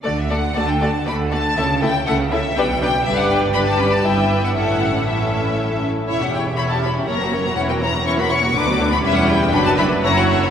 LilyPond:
<<
  \new Staff \with { instrumentName = "Violin section" } { \time 3/4 \key d \major \tempo 4 = 120 d''16 e''16 fis''8 a''16 g''16 a''8 b''8 a''8~ | a''8 g''8 fis''8 e''8 g''8 g''8 | e''16 fis''16 g''8 b''16 a''16 b''16 a''16 g''8. fis''16 | fis''4 e''4. r8 |
\key b \minor e''16 fis''16 g''8 b''16 a''16 b''8 ais''8. ais''16 | fis''16 g''16 ais''8 cis'''16 b''16 cis'''8 d'''8. b''16 | e''16 fis''16 g''8 b''16 a''16 b''8 ais''16 fis''16 e''16 cis''16 | }
  \new Staff \with { instrumentName = "Violin section" } { \time 3/4 \key d \major << { d''8 d''8 d''8 d''8 d''8 d''8 | e''8 e''8 e''8 e''8 d''8 d''8 | d''4 d''4 e''4 | e''4 e''4. r8 |
\key b \minor cis''16 e''16 cis''16 e''16 cis''16 e''16 cis''16 e''16 cis''16 ais'16 cis''16 ais'16 | cis''16 ais'16 cis''16 ais'16 cis''16 ais'16 cis''16 ais'16 b'16 d''16 b'16 d''16 | b'4 b'4 cis''4 | } \\ { a'8 a'8 a'8 a'8 a'8 a'8 | a'8 a'8 a'8 a'8 b'8 b'8 | b'4 b'4 b'4 | a'4 a'4. r8 |
e'16 g'16 e'16 g'16 e'16 g'16 e'16 g'16 ais'16 fis'16 ais'16 fis'16 | e'16 fis'16 e'16 fis'16 e'16 fis'16 e'16 fis'16 d'16 fis'16 d'16 fis'16 | e'4 d'8 e'8 fis'4 | } >> }
  \new Staff \with { instrumentName = "Viola section" } { \time 3/4 \key d \major << { fis'8 fis'8 fis'8 fis'8 fis'8 fis'8 | e'8 e'8 e'8 e'8 g'8 g'8 | g'4 g'4 e'4 | e'4 e'4. r8 |
\key b \minor e'16 cis'16 e'16 cis'16 e'16 cis'16 e'16 cis'16 cis'16 ais16 cis'16 ais16 | cis'16 ais16 cis'16 ais16 cis'16 ais16 cis'16 ais16 d'16 b16 d'16 b16 | cis'4 d'4 e'4 | } \\ { a8 a8 a8 a8 a8 a8 | a8 a8 a8 a8 d'8 d'8 | d'4 d'8 cis'8 b4 | cis'4 cis'4. r8 |
e'16 cis'16 e'16 cis'16 e'16 cis'16 e'16 cis'16 ais16 fis16 ais16 fis16 | e16 fis16 e16 fis16 e16 fis16 e16 fis16 d16 fis16 d16 fis16 | g4 fis4 fis4 | } >> }
  \new Staff \with { instrumentName = "Cello section" } { \clef bass \time 3/4 \key d \major d4 d4 d4 | cis4 cis4 b,4 | g,2 g,4 | a,2~ a,8 r8 |
\key b \minor e,2 fis,4 | e,2 d,4 | e,4 fis,4 fis,4 | }
  \new Staff \with { instrumentName = "Double bass section" } { \clef bass \time 3/4 \key d \major d,4 d,4 d,4 | cis,4 cis,4 b,,4 | g,,2 g,,4 | a,,2~ a,,8 r8 |
\key b \minor e,,2 fis,,4 | e,,2 d,4 | e,,4 fis,,4 fis,,4 | }
>>